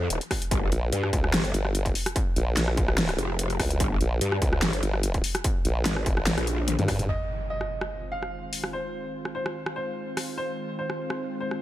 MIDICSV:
0, 0, Header, 1, 7, 480
1, 0, Start_track
1, 0, Key_signature, -4, "minor"
1, 0, Tempo, 410959
1, 600, Time_signature, 4, 2, 24, 8
1, 13570, End_track
2, 0, Start_track
2, 0, Title_t, "Grand piano"
2, 0, Program_c, 0, 0
2, 8280, Note_on_c, 0, 75, 92
2, 8689, Note_off_c, 0, 75, 0
2, 8762, Note_on_c, 0, 75, 85
2, 9391, Note_off_c, 0, 75, 0
2, 9480, Note_on_c, 0, 77, 84
2, 10110, Note_off_c, 0, 77, 0
2, 10199, Note_on_c, 0, 72, 89
2, 10830, Note_off_c, 0, 72, 0
2, 10919, Note_on_c, 0, 72, 79
2, 11329, Note_off_c, 0, 72, 0
2, 11400, Note_on_c, 0, 72, 83
2, 12030, Note_off_c, 0, 72, 0
2, 12119, Note_on_c, 0, 72, 95
2, 12528, Note_off_c, 0, 72, 0
2, 12600, Note_on_c, 0, 72, 83
2, 13230, Note_off_c, 0, 72, 0
2, 13321, Note_on_c, 0, 72, 82
2, 13570, Note_off_c, 0, 72, 0
2, 13570, End_track
3, 0, Start_track
3, 0, Title_t, "Analog synth pad"
3, 0, Program_c, 1, 89
3, 8280, Note_on_c, 1, 65, 70
3, 8281, Note_on_c, 1, 51, 79
3, 8281, Note_on_c, 1, 56, 73
3, 8281, Note_on_c, 1, 60, 69
3, 8281, Note_on_c, 1, 72, 88
3, 13570, Note_off_c, 1, 51, 0
3, 13570, Note_off_c, 1, 56, 0
3, 13570, Note_off_c, 1, 60, 0
3, 13570, Note_off_c, 1, 65, 0
3, 13570, Note_off_c, 1, 72, 0
3, 13570, End_track
4, 0, Start_track
4, 0, Title_t, "Wobble bass"
4, 0, Program_c, 2, 39
4, 840, Note_on_c, 2, 34, 98
4, 1062, Note_off_c, 2, 34, 0
4, 1320, Note_on_c, 2, 37, 96
4, 1542, Note_off_c, 2, 37, 0
4, 1801, Note_on_c, 2, 31, 100
4, 2263, Note_off_c, 2, 31, 0
4, 2761, Note_on_c, 2, 34, 95
4, 2982, Note_off_c, 2, 34, 0
4, 3001, Note_on_c, 2, 34, 99
4, 3702, Note_off_c, 2, 34, 0
4, 4200, Note_on_c, 2, 37, 102
4, 4422, Note_off_c, 2, 37, 0
4, 4680, Note_on_c, 2, 34, 93
4, 4902, Note_off_c, 2, 34, 0
4, 5160, Note_on_c, 2, 37, 101
4, 5382, Note_off_c, 2, 37, 0
4, 5640, Note_on_c, 2, 31, 97
4, 6102, Note_off_c, 2, 31, 0
4, 6601, Note_on_c, 2, 34, 94
4, 6823, Note_off_c, 2, 34, 0
4, 7080, Note_on_c, 2, 29, 99
4, 7187, Note_off_c, 2, 29, 0
4, 7209, Note_on_c, 2, 32, 96
4, 7428, Note_off_c, 2, 32, 0
4, 7929, Note_on_c, 2, 43, 101
4, 8263, Note_off_c, 2, 43, 0
4, 13570, End_track
5, 0, Start_track
5, 0, Title_t, "Wobble bass"
5, 0, Program_c, 3, 39
5, 119, Note_on_c, 3, 27, 99
5, 227, Note_off_c, 3, 27, 0
5, 599, Note_on_c, 3, 31, 98
5, 822, Note_off_c, 3, 31, 0
5, 1080, Note_on_c, 3, 43, 94
5, 1302, Note_off_c, 3, 43, 0
5, 1560, Note_on_c, 3, 31, 101
5, 1782, Note_off_c, 3, 31, 0
5, 3719, Note_on_c, 3, 29, 102
5, 4182, Note_off_c, 3, 29, 0
5, 4440, Note_on_c, 3, 31, 99
5, 4662, Note_off_c, 3, 31, 0
5, 4919, Note_on_c, 3, 43, 92
5, 5142, Note_off_c, 3, 43, 0
5, 5401, Note_on_c, 3, 31, 103
5, 5623, Note_off_c, 3, 31, 0
5, 6840, Note_on_c, 3, 32, 90
5, 7062, Note_off_c, 3, 32, 0
5, 7448, Note_on_c, 3, 34, 96
5, 7907, Note_off_c, 3, 34, 0
5, 13570, End_track
6, 0, Start_track
6, 0, Title_t, "Impact"
6, 0, Program_c, 4, 103
6, 8279, Note_on_c, 4, 60, 67
6, 10200, Note_off_c, 4, 60, 0
6, 13570, End_track
7, 0, Start_track
7, 0, Title_t, "Drums"
7, 120, Note_on_c, 9, 42, 84
7, 236, Note_off_c, 9, 42, 0
7, 248, Note_on_c, 9, 42, 37
7, 360, Note_on_c, 9, 36, 62
7, 360, Note_on_c, 9, 37, 76
7, 360, Note_on_c, 9, 46, 88
7, 364, Note_off_c, 9, 42, 0
7, 477, Note_off_c, 9, 36, 0
7, 477, Note_off_c, 9, 37, 0
7, 477, Note_off_c, 9, 46, 0
7, 488, Note_on_c, 9, 42, 62
7, 600, Note_off_c, 9, 42, 0
7, 600, Note_on_c, 9, 36, 120
7, 600, Note_on_c, 9, 42, 75
7, 717, Note_off_c, 9, 36, 0
7, 717, Note_off_c, 9, 42, 0
7, 840, Note_on_c, 9, 42, 50
7, 957, Note_off_c, 9, 42, 0
7, 1080, Note_on_c, 9, 42, 80
7, 1197, Note_off_c, 9, 42, 0
7, 1209, Note_on_c, 9, 37, 65
7, 1320, Note_on_c, 9, 36, 102
7, 1321, Note_on_c, 9, 42, 52
7, 1325, Note_off_c, 9, 37, 0
7, 1437, Note_off_c, 9, 36, 0
7, 1437, Note_off_c, 9, 42, 0
7, 1448, Note_on_c, 9, 37, 84
7, 1561, Note_on_c, 9, 38, 117
7, 1561, Note_on_c, 9, 42, 73
7, 1565, Note_off_c, 9, 37, 0
7, 1678, Note_off_c, 9, 38, 0
7, 1678, Note_off_c, 9, 42, 0
7, 1689, Note_on_c, 9, 42, 36
7, 1801, Note_off_c, 9, 42, 0
7, 1801, Note_on_c, 9, 42, 52
7, 1918, Note_off_c, 9, 42, 0
7, 1929, Note_on_c, 9, 37, 54
7, 2042, Note_on_c, 9, 42, 79
7, 2046, Note_off_c, 9, 37, 0
7, 2158, Note_off_c, 9, 42, 0
7, 2168, Note_on_c, 9, 36, 65
7, 2169, Note_on_c, 9, 42, 35
7, 2280, Note_on_c, 9, 46, 90
7, 2284, Note_off_c, 9, 36, 0
7, 2286, Note_off_c, 9, 42, 0
7, 2397, Note_off_c, 9, 46, 0
7, 2409, Note_on_c, 9, 37, 79
7, 2409, Note_on_c, 9, 42, 63
7, 2520, Note_on_c, 9, 36, 116
7, 2521, Note_off_c, 9, 42, 0
7, 2521, Note_on_c, 9, 42, 76
7, 2525, Note_off_c, 9, 37, 0
7, 2637, Note_off_c, 9, 36, 0
7, 2637, Note_off_c, 9, 42, 0
7, 2761, Note_on_c, 9, 42, 52
7, 2877, Note_off_c, 9, 42, 0
7, 3001, Note_on_c, 9, 38, 62
7, 3001, Note_on_c, 9, 42, 75
7, 3118, Note_off_c, 9, 38, 0
7, 3118, Note_off_c, 9, 42, 0
7, 3128, Note_on_c, 9, 37, 64
7, 3240, Note_on_c, 9, 36, 103
7, 3241, Note_on_c, 9, 42, 51
7, 3245, Note_off_c, 9, 37, 0
7, 3357, Note_off_c, 9, 36, 0
7, 3358, Note_off_c, 9, 42, 0
7, 3368, Note_on_c, 9, 37, 84
7, 3480, Note_on_c, 9, 38, 111
7, 3480, Note_on_c, 9, 42, 79
7, 3485, Note_off_c, 9, 37, 0
7, 3597, Note_off_c, 9, 38, 0
7, 3597, Note_off_c, 9, 42, 0
7, 3608, Note_on_c, 9, 37, 82
7, 3608, Note_on_c, 9, 42, 37
7, 3720, Note_off_c, 9, 42, 0
7, 3720, Note_on_c, 9, 42, 52
7, 3724, Note_off_c, 9, 37, 0
7, 3837, Note_off_c, 9, 42, 0
7, 3960, Note_on_c, 9, 42, 78
7, 4077, Note_off_c, 9, 42, 0
7, 4088, Note_on_c, 9, 42, 36
7, 4200, Note_on_c, 9, 36, 61
7, 4200, Note_on_c, 9, 37, 84
7, 4200, Note_on_c, 9, 46, 95
7, 4204, Note_off_c, 9, 42, 0
7, 4316, Note_off_c, 9, 37, 0
7, 4316, Note_off_c, 9, 46, 0
7, 4317, Note_off_c, 9, 36, 0
7, 4328, Note_on_c, 9, 42, 59
7, 4439, Note_off_c, 9, 42, 0
7, 4439, Note_on_c, 9, 42, 82
7, 4440, Note_on_c, 9, 36, 115
7, 4556, Note_off_c, 9, 42, 0
7, 4557, Note_off_c, 9, 36, 0
7, 4680, Note_on_c, 9, 42, 50
7, 4797, Note_off_c, 9, 42, 0
7, 4920, Note_on_c, 9, 42, 82
7, 5037, Note_off_c, 9, 42, 0
7, 5047, Note_on_c, 9, 37, 67
7, 5160, Note_on_c, 9, 36, 100
7, 5160, Note_on_c, 9, 42, 52
7, 5164, Note_off_c, 9, 37, 0
7, 5277, Note_off_c, 9, 36, 0
7, 5277, Note_off_c, 9, 42, 0
7, 5288, Note_on_c, 9, 37, 87
7, 5400, Note_on_c, 9, 38, 113
7, 5400, Note_on_c, 9, 42, 76
7, 5404, Note_off_c, 9, 37, 0
7, 5516, Note_off_c, 9, 38, 0
7, 5516, Note_off_c, 9, 42, 0
7, 5527, Note_on_c, 9, 42, 37
7, 5639, Note_off_c, 9, 42, 0
7, 5639, Note_on_c, 9, 42, 53
7, 5756, Note_off_c, 9, 42, 0
7, 5767, Note_on_c, 9, 37, 58
7, 5879, Note_on_c, 9, 42, 80
7, 5884, Note_off_c, 9, 37, 0
7, 5995, Note_off_c, 9, 42, 0
7, 6007, Note_on_c, 9, 36, 64
7, 6007, Note_on_c, 9, 42, 36
7, 6119, Note_on_c, 9, 46, 99
7, 6123, Note_off_c, 9, 42, 0
7, 6124, Note_off_c, 9, 36, 0
7, 6235, Note_off_c, 9, 46, 0
7, 6246, Note_on_c, 9, 37, 84
7, 6246, Note_on_c, 9, 42, 60
7, 6358, Note_off_c, 9, 42, 0
7, 6358, Note_on_c, 9, 42, 82
7, 6360, Note_on_c, 9, 36, 112
7, 6363, Note_off_c, 9, 37, 0
7, 6475, Note_off_c, 9, 42, 0
7, 6477, Note_off_c, 9, 36, 0
7, 6599, Note_on_c, 9, 42, 54
7, 6716, Note_off_c, 9, 42, 0
7, 6839, Note_on_c, 9, 38, 64
7, 6839, Note_on_c, 9, 42, 83
7, 6956, Note_off_c, 9, 38, 0
7, 6956, Note_off_c, 9, 42, 0
7, 6967, Note_on_c, 9, 37, 65
7, 7080, Note_on_c, 9, 36, 103
7, 7080, Note_on_c, 9, 42, 55
7, 7084, Note_off_c, 9, 37, 0
7, 7197, Note_off_c, 9, 36, 0
7, 7197, Note_off_c, 9, 42, 0
7, 7207, Note_on_c, 9, 37, 87
7, 7320, Note_on_c, 9, 38, 114
7, 7320, Note_on_c, 9, 42, 84
7, 7324, Note_off_c, 9, 37, 0
7, 7437, Note_off_c, 9, 38, 0
7, 7437, Note_off_c, 9, 42, 0
7, 7447, Note_on_c, 9, 37, 83
7, 7447, Note_on_c, 9, 42, 39
7, 7559, Note_off_c, 9, 42, 0
7, 7559, Note_on_c, 9, 42, 54
7, 7564, Note_off_c, 9, 37, 0
7, 7676, Note_off_c, 9, 42, 0
7, 7799, Note_on_c, 9, 42, 84
7, 7799, Note_on_c, 9, 48, 67
7, 7916, Note_off_c, 9, 42, 0
7, 7916, Note_off_c, 9, 48, 0
7, 7928, Note_on_c, 9, 42, 38
7, 7928, Note_on_c, 9, 48, 67
7, 8040, Note_on_c, 9, 36, 60
7, 8040, Note_on_c, 9, 37, 84
7, 8040, Note_on_c, 9, 46, 95
7, 8044, Note_off_c, 9, 42, 0
7, 8044, Note_off_c, 9, 48, 0
7, 8156, Note_off_c, 9, 36, 0
7, 8157, Note_off_c, 9, 37, 0
7, 8157, Note_off_c, 9, 46, 0
7, 8168, Note_on_c, 9, 42, 63
7, 8168, Note_on_c, 9, 45, 85
7, 8285, Note_off_c, 9, 42, 0
7, 8285, Note_off_c, 9, 45, 0
7, 8887, Note_on_c, 9, 37, 55
7, 9004, Note_off_c, 9, 37, 0
7, 9127, Note_on_c, 9, 37, 71
7, 9244, Note_off_c, 9, 37, 0
7, 9608, Note_on_c, 9, 37, 44
7, 9724, Note_off_c, 9, 37, 0
7, 9960, Note_on_c, 9, 46, 88
7, 10076, Note_off_c, 9, 46, 0
7, 10087, Note_on_c, 9, 37, 69
7, 10204, Note_off_c, 9, 37, 0
7, 10808, Note_on_c, 9, 37, 49
7, 10924, Note_off_c, 9, 37, 0
7, 11047, Note_on_c, 9, 37, 70
7, 11164, Note_off_c, 9, 37, 0
7, 11287, Note_on_c, 9, 37, 71
7, 11404, Note_off_c, 9, 37, 0
7, 11879, Note_on_c, 9, 37, 68
7, 11879, Note_on_c, 9, 46, 83
7, 11996, Note_off_c, 9, 37, 0
7, 11996, Note_off_c, 9, 46, 0
7, 12728, Note_on_c, 9, 37, 51
7, 12844, Note_off_c, 9, 37, 0
7, 12967, Note_on_c, 9, 37, 67
7, 13084, Note_off_c, 9, 37, 0
7, 13447, Note_on_c, 9, 37, 44
7, 13564, Note_off_c, 9, 37, 0
7, 13570, End_track
0, 0, End_of_file